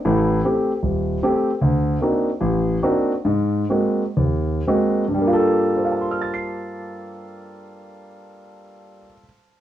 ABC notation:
X:1
M:4/4
L:1/8
Q:"Swing" 1/4=125
K:Gm
V:1 name="Grand piano"
[A,,,A,,]2 [A,CG] z E,,,2 [A,CG] z | D,,2 [B,CDE^F] z A,,,2 [B,CDEF] z | _A,,2 [_A,B,C_G] z E,,2 [A,B,CG] z | z2 [cfac'f'a'c'']6- |
[cfac'f'a'c'']8 |]
V:2 name="Grand piano"
z8 | z8 | z8 | [G,,G,B,FA]8- |
[G,,G,B,FA]8 |]